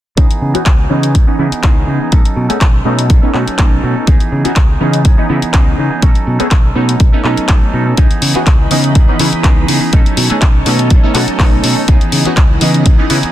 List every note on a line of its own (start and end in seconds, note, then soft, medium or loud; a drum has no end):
0.17 0.27 C#2 loud
0.17 0.54 E3 medium
0.17 0.25 E3 medium
0.17 0.26 B3 medium
0.17 0.55 B3 medium
0.17 0.26 C#4 medium
0.17 0.26 D#4 medium
0.17 0.55 D#4 loud
0.17 0.53 G#4 loud
0.17 kick loud
0.17 closed hi-hat medium
0.31 closed hi-hat medium
0.42 0.51 C#3 medium
0.54 0.62 E3 medium
0.54 0.62 B3 medium
0.54 0.80 B3 medium
0.54 0.62 C#4 medium
0.54 0.79 D#4 medium
0.54 0.62 F#4 medium
0.54 0.77 G#4 medium
0.54 muted fingered electric bass stroke soft
0.54 closed hi-hat soft
0.66 0.85 C#2 medium
0.66 kick loud
0.66 clap loud
0.66 closed hi-hat medium
0.78 0.89 B3 soft
0.78 0.91 D#4 medium
0.78 0.90 G#4 medium
0.89 1.17 C#3 medium
0.89 1.27 E3 medium
0.89 1.24 E3 medium
0.89 1.25 B3 medium
0.89 1.28 B3 medium
0.89 1.25 C#4 medium
0.89 1.25 D#4 medium
0.89 1.28 D#4 medium
0.89 1.26 G#4 medium
1.03 closed hi-hat medium
1.15 1.25 C#2 medium
1.15 kick loud
1.15 closed hi-hat medium
1.27 1.36 E3 medium
1.27 1.36 B3 medium
1.27 1.38 B3 soft
1.27 1.36 C#4 medium
1.27 1.37 D#4 loud
1.27 1.39 D#4 medium
1.27 1.39 G#4 medium
1.27 muted fingered electric bass stroke soft
1.38 1.49 C#3 medium
1.38 1.61 E3 medium
1.38 1.47 E3 medium
1.38 1.48 B3 medium
1.38 1.62 B3 medium
1.38 1.48 C#4 medium
1.38 1.63 D#4 medium
1.38 1.48 E4 medium
1.38 1.64 G#4 medium
1.52 muted fingered electric bass stroke soft
1.52 closed hi-hat soft
1.63 1.82 C#2 medium
1.63 1.86 E3 medium
1.63 2.10 E3 medium
1.63 2.10 B3 medium
1.63 1.87 B3 medium
1.63 2.10 C#4 medium
1.63 2.10 D#4 medium
1.63 1.88 D#4 loud
1.63 1.89 G#4 loud
1.63 kick loud
1.63 clap loud
1.63 closed hi-hat medium
1.87 1.97 C#3 medium
1.87 2.01 E3 medium
1.87 2.01 B3 medium
1.87 2.00 D#4 medium
1.87 1.99 G#4 medium
2.00 2.12 B3 medium
2.00 2.12 D#4 medium
2.00 2.12 G#4 medium
2.12 2.22 B1 loud
2.12 2.50 F#3 medium
2.12 2.21 A3 medium
2.12 2.21 B3 medium
2.12 2.50 C#4 medium
2.12 2.21 C#4 medium
2.12 2.21 D#4 medium
2.12 2.49 D#4 loud
2.12 2.47 A4 medium
2.12 kick loud
2.12 closed hi-hat medium
2.25 muted fingered electric bass stroke soft
2.25 closed hi-hat medium
2.36 2.46 B2 loud
2.49 2.57 A3 medium
2.49 2.57 B3 medium
2.49 2.57 C#4 medium
2.49 2.84 C#4 medium
2.49 2.85 D#4 medium
2.49 2.57 G#4 medium
2.49 2.85 A4 medium
2.49 muted fingered electric bass stroke soft
2.49 closed hi-hat soft
2.61 2.80 B1 medium
2.61 kick loud
2.61 clap loud
2.61 closed hi-hat medium
2.84 3.12 B2 medium
2.84 3.22 F#3 medium
2.84 3.20 A3 medium
2.84 3.20 B3 medium
2.84 3.23 C#4 medium
2.84 3.20 C#4 medium
2.84 3.20 D#4 loud
2.84 3.22 D#4 medium
2.84 3.20 A4 medium
2.99 closed hi-hat medium
3.10 3.20 B1 medium
3.10 kick loud
3.10 closed hi-hat medium
3.22 3.31 A3 medium
3.22 3.32 B3 medium
3.22 3.32 C#4 medium
3.22 3.33 C#4 medium
3.22 3.32 D#4 loud
3.22 3.34 D#4 medium
3.22 3.34 A4 medium
3.22 muted fingered electric bass stroke soft
3.33 3.44 B2 medium
3.33 3.57 F#3 medium
3.33 3.42 A3 medium
3.33 3.43 B3 medium
3.33 3.43 C#4 medium
3.33 3.57 C#4 medium
3.33 3.58 D#4 medium
3.33 3.43 F#4 medium
3.33 3.59 A4 medium
3.33 clap medium
3.48 muted fingered electric bass stroke soft
3.48 closed hi-hat soft
3.58 3.77 B1 loud
3.58 3.81 F#3 medium
3.58 4.04 A3 medium
3.58 4.05 B3 medium
3.58 4.05 C#4 medium
3.58 3.82 C#4 loud
3.58 4.05 D#4 medium
3.58 3.83 D#4 loud
3.58 3.84 A4 medium
3.58 kick loud
3.58 clap loud
3.58 closed hi-hat medium
3.82 3.93 B2 medium
3.82 3.96 F#3 medium
3.82 3.96 C#4 medium
3.82 3.96 D#4 medium
3.82 3.94 A4 medium
3.95 4.07 C#4 medium
3.95 4.07 D#4 medium
3.95 4.07 A4 medium
4.07 4.17 C#2 medium
4.07 4.16 E3 medium
4.07 4.45 E3 medium
4.07 4.16 B3 medium
4.07 4.45 B3 medium
4.07 4.16 C#4 medium
4.07 4.16 D#4 medium
4.07 4.45 D#4 loud
4.07 4.43 G#4 loud
4.07 kick loud
4.07 closed hi-hat medium
4.20 closed hi-hat medium
4.32 4.42 C#3 loud
4.44 4.52 E3 medium
4.44 4.52 B3 medium
4.44 4.71 B3 medium
4.44 4.52 C#4 medium
4.44 4.69 D#4 medium
4.44 4.52 F#4 medium
4.44 4.67 G#4 medium
4.44 muted fingered electric bass stroke soft
4.44 closed hi-hat soft
4.56 4.75 C#2 medium
4.56 kick loud
4.56 clap loud
4.56 closed hi-hat medium
4.69 4.80 B3 soft
4.69 4.81 D#4 medium
4.69 4.80 G#4 medium
4.80 5.07 C#3 medium
4.80 5.03 E3 medium
4.80 5.15 E3 medium
4.80 5.15 B3 medium
4.80 5.04 B3 medium
4.80 5.15 C#4 medium
4.80 5.15 D#4 medium
4.80 5.06 D#4 medium
4.80 5.06 G#4 medium
4.93 closed hi-hat soft
5.04 5.15 C#2 medium
5.04 5.18 E3 medium
5.04 5.18 D#4 medium
5.04 5.16 G#4 medium
5.04 kick loud
5.04 closed hi-hat medium
5.17 5.27 E3 medium
5.17 5.27 B3 medium
5.17 5.29 B3 medium
5.17 5.27 C#4 medium
5.17 5.27 D#4 loud
5.17 5.30 D#4 medium
5.17 5.29 G#4 medium
5.17 muted fingered electric bass stroke soft
5.28 5.39 C#3 medium
5.28 5.52 E3 medium
5.28 5.38 E3 medium
5.28 5.38 B3 medium
5.28 5.53 B3 medium
5.28 5.38 C#4 medium
5.28 5.54 D#4 medium
5.28 5.38 E4 medium
5.28 5.54 G#4 medium
5.42 muted fingered electric bass stroke soft
5.42 closed hi-hat soft
5.53 5.73 C#2 loud
5.53 5.76 E3 medium
5.53 6.00 E3 medium
5.53 6.00 B3 medium
5.53 6.00 C#4 medium
5.53 6.00 D#4 medium
5.53 5.78 D#4 loud
5.53 5.79 G#4 loud
5.53 kick loud
5.53 clap loud
5.53 closed hi-hat medium
5.77 5.88 C#3 medium
5.77 5.91 E3 medium
5.77 5.91 B3 medium
5.77 5.91 D#4 medium
5.77 5.89 G#4 medium
5.90 6.02 B3 soft
5.90 6.02 D#4 medium
5.90 6.02 G#4 medium
6.02 6.12 B1 loud
6.02 6.40 F#3 medium
6.02 6.11 A3 medium
6.02 6.11 B3 medium
6.02 6.11 C#4 medium
6.02 6.40 C#4 medium
6.02 6.11 D#4 medium
6.02 6.39 D#4 loud
6.02 6.38 A4 loud
6.02 kick loud
6.02 closed hi-hat medium
6.15 muted fingered electric bass stroke soft
6.15 closed hi-hat soft
6.27 6.37 B2 loud
6.39 6.47 A3 medium
6.39 6.47 B3 medium
6.39 6.47 C#4 medium
6.39 6.66 C#4 soft
6.39 6.64 D#4 medium
6.39 6.47 G#4 medium
6.39 6.62 A4 medium
6.39 muted fingered electric bass stroke soft
6.39 closed hi-hat soft
6.51 6.70 B1 medium
6.51 kick loud
6.51 clap loud
6.51 closed hi-hat medium
6.64 6.75 C#4 soft
6.64 6.76 D#4 medium
6.64 6.75 A4 medium
6.74 6.94 B2 medium
6.74 7.13 F#3 medium
6.74 7.10 A3 medium
6.74 7.10 B3 medium
6.74 7.10 C#4 medium
6.74 7.13 C#4 medium
6.74 7.10 D#4 loud
6.74 7.13 D#4 medium
6.74 7.11 A4 medium
6.89 closed hi-hat soft
7.00 7.10 B1 medium
7.00 kick loud
7.00 closed hi-hat medium
7.12 7.22 A3 medium
7.12 7.22 B3 medium
7.12 7.22 C#4 medium
7.12 7.24 C#4 soft
7.12 7.22 D#4 medium
7.12 7.25 D#4 medium
7.12 7.24 A4 medium
7.12 muted fingered electric bass stroke soft
7.24 7.34 B2 medium
7.24 7.47 F#3 medium
7.24 7.95 A3 medium
7.24 7.95 B3 medium
7.24 7.48 C#4 medium
7.24 7.95 C#4 medium
7.24 7.96 D#4 medium
7.24 7.49 D#4 medium
7.24 7.49 A4 medium
7.24 clap medium
7.37 muted fingered electric bass stroke soft
7.37 closed hi-hat soft
7.48 7.59 B1 medium
7.48 7.71 F#3 medium
7.48 7.72 C#4 medium
7.48 7.73 D#4 medium
7.48 7.74 A4 medium
7.48 kick loud
7.48 clap loud
7.48 closed hi-hat medium
7.72 7.92 B2 medium
7.72 7.86 F#3 medium
7.72 7.87 C#4 medium
7.72 7.86 D#4 medium
7.72 7.84 A4 medium
7.86 7.97 C#4 medium
7.86 7.97 D#4 medium
7.86 7.97 A4 medium
7.97 8.08 C#2 loud
7.97 8.35 E3 medium
7.97 8.06 E3 medium
7.97 9.91 E3 medium
7.97 8.35 B3 medium
7.97 8.06 B3 medium
7.97 8.06 C#4 medium
7.97 8.07 D#4 medium
7.97 8.35 D#4 loud
7.97 8.33 G#4 loud
7.97 9.91 D#5 medium
7.97 9.91 B5 medium
7.97 kick loud
7.97 closed hi-hat medium
8.11 closed hi-hat medium
8.22 8.32 C#3 loud
8.22 open hi-hat loud
8.34 8.43 E3 medium
8.34 8.43 B3 medium
8.34 8.61 B3 soft
8.34 8.43 C#4 medium
8.34 8.59 D#4 medium
8.34 8.43 F#4 medium
8.34 8.57 G#4 medium
8.34 muted fingered electric bass stroke soft
8.34 closed hi-hat soft
8.47 8.65 C#2 medium
8.47 kick loud
8.47 clap loud
8.47 closed hi-hat medium
8.59 8.70 B3 soft
8.59 8.71 D#4 medium
8.59 8.70 G#4 medium
8.70 8.97 C#3 medium
8.70 8.93 E3 medium
8.70 9.05 E3 medium
8.70 9.05 B3 medium
8.70 8.94 B3 medium
8.70 9.05 C#4 medium
8.70 9.06 D#4 loud
8.70 8.95 D#4 medium
8.70 8.96 G#4 medium
8.70 open hi-hat loud
8.84 closed hi-hat soft
8.94 9.05 C#2 medium
8.94 9.08 E3 medium
8.94 9.06 G#4 medium
8.94 kick loud
8.94 closed hi-hat medium
9.07 9.17 E3 medium
9.07 9.17 B3 medium
9.07 9.19 B3 medium
9.07 9.17 C#4 medium
9.07 9.17 D#4 medium
9.07 9.20 D#4 medium
9.07 9.19 G#4 medium
9.07 muted fingered electric bass stroke soft
9.19 9.29 C#3 medium
9.19 9.42 E3 medium
9.19 9.28 E3 medium
9.19 9.43 B3 medium
9.19 9.28 B3 medium
9.19 9.28 C#4 medium
9.19 9.44 D#4 medium
9.19 9.29 E4 loud
9.19 9.44 G#4 medium
9.19 open hi-hat loud
9.33 muted fingered electric bass stroke soft
9.33 closed hi-hat soft
9.43 9.63 C#2 loud
9.43 9.66 E3 medium
9.43 9.90 E3 medium
9.43 9.90 B3 medium
9.43 9.68 B3 loud
9.43 9.90 C#4 medium
9.43 9.90 D#4 medium
9.43 9.68 D#4 medium
9.43 9.69 G#4 medium
9.43 kick loud
9.43 clap loud
9.43 closed hi-hat medium
9.67 9.78 C#3 medium
9.67 9.81 E3 medium
9.67 9.82 B3 medium
9.67 9.81 D#4 medium
9.67 9.80 G#4 medium
9.67 open hi-hat loud
9.81 9.93 B3 soft
9.81 9.93 D#4 medium
9.81 9.92 G#4 medium
9.92 10.03 B1 loud
9.92 10.30 F#3 medium
9.92 10.01 A3 medium
9.92 10.02 B3 medium
9.92 10.31 C#4 medium
9.92 10.02 C#4 medium
9.92 11.86 D#4 medium
9.92 10.02 D#4 medium
9.92 10.30 D#4 medium
9.92 10.28 A4 loud
9.92 11.86 C#5 medium
9.92 11.86 A5 medium
9.92 kick loud
9.92 closed hi-hat medium
10.06 muted fingered electric bass stroke soft
10.06 closed hi-hat medium
10.17 10.27 B2 loud
10.17 open hi-hat loud
10.30 10.38 A3 medium
10.30 10.38 B3 medium
10.30 10.38 C#4 medium
10.30 10.66 C#4 soft
10.30 10.67 D#4 medium
10.30 10.38 G#4 medium
10.30 10.66 A4 medium
10.30 muted fingered electric bass stroke soft
10.30 closed hi-hat soft
10.42 10.60 B1 medium
10.42 kick loud
10.42 clap loud
10.42 closed hi-hat medium
10.66 10.92 B2 medium
10.66 11.03 F#3 medium
10.66 11.00 A3 medium
10.66 11.00 B3 medium
10.66 11.01 C#4 medium
10.66 11.04 C#4 medium
10.66 11.01 D#4 loud
10.66 11.04 D#4 medium
10.66 11.02 A4 medium
10.66 open hi-hat loud
10.79 closed hi-hat soft
10.90 11.00 B1 medium
10.90 kick loud
10.90 closed hi-hat medium
11.03 11.12 A3 medium
11.03 11.12 B3 medium
11.03 11.12 C#4 medium
11.03 11.14 C#4 medium
11.03 11.12 D#4 loud
11.03 11.16 D#4 medium
11.03 11.15 A4 medium
11.03 muted fingered electric bass stroke soft
11.14 11.24 B2 medium
11.14 11.38 F#3 medium
11.14 11.23 A3 medium
11.14 11.23 B3 medium
11.14 11.24 C#4 medium
11.14 11.39 C#4 medium
11.14 11.39 D#4 medium
11.14 11.24 F#4 medium
11.14 11.40 A4 medium
11.14 clap medium
11.14 open hi-hat loud
11.28 muted fingered electric bass stroke soft
11.28 closed hi-hat soft
11.39 11.58 B1 loud
11.39 11.62 F#3 medium
11.39 11.85 A3 medium
11.39 11.86 B3 medium
11.39 11.63 C#4 loud
11.39 11.86 C#4 medium
11.39 11.86 D#4 medium
11.39 11.64 D#4 loud
11.39 11.65 A4 loud
11.39 kick loud
11.39 clap loud
11.39 open hi-hat medium
11.63 11.73 B2 medium
11.63 11.77 F#3 medium
11.63 11.77 C#4 medium
11.63 11.77 D#4 medium
11.63 11.75 A4 medium
11.63 open hi-hat loud
11.77 11.89 C#4 soft
11.77 11.89 D#4 medium
11.77 11.88 A4 medium
11.88 11.98 C#2 loud
11.88 11.97 E3 medium
11.88 13.32 E3 medium
11.88 11.97 B3 medium
11.88 12.26 B3 loud
11.88 11.97 C#4 medium
11.88 11.97 D#4 medium
11.88 12.26 D#4 medium
11.88 12.24 G#4 loud
11.88 13.32 D#5 medium
11.88 13.32 B5 medium
11.88 kick loud
11.88 closed hi-hat medium
12.01 closed hi-hat medium
12.12 12.22 C#3 loud
12.12 open hi-hat loud
12.25 12.33 E3 medium
12.25 12.33 B3 medium
12.25 12.61 B3 medium
12.25 12.33 C#4 medium
12.25 12.62 D#4 medium
12.25 12.33 F#4 medium
12.25 12.61 G#4 medium
12.25 muted fingered electric bass stroke soft
12.25 closed hi-hat soft
12.37 12.56 C#2 medium
12.37 kick loud
12.37 clap loud
12.37 closed hi-hat medium
12.61 12.88 C#3 medium
12.61 12.98 E3 medium
12.61 12.96 E3 medium
12.61 12.96 B3 medium
12.61 12.99 B3 medium
12.61 12.96 C#4 medium
12.61 12.96 D#4 loud
12.61 12.99 D#4 medium
12.61 12.97 G#4 medium
12.61 open hi-hat loud
12.74 closed hi-hat medium
12.86 12.96 C#2 medium
12.86 kick loud
12.86 closed hi-hat medium
12.98 13.07 E3 medium
12.98 13.07 B3 medium
12.98 13.10 B3 medium
12.98 13.07 C#4 medium
12.98 13.08 D#4 loud
12.98 13.11 D#4 medium
12.98 13.10 G#4 medium
12.98 muted fingered electric bass stroke soft
13.09 13.20 C#3 medium
13.09 13.32 E3 medium
13.09 13.18 E3 medium
13.09 13.18 B3 medium
13.09 13.32 B3 medium
13.09 13.19 C#4 medium
13.09 13.32 D#4 medium
13.09 13.19 E4 loud
13.09 13.32 G#4 medium
13.09 open hi-hat loud
13.23 muted fingered electric bass stroke soft
13.23 closed hi-hat soft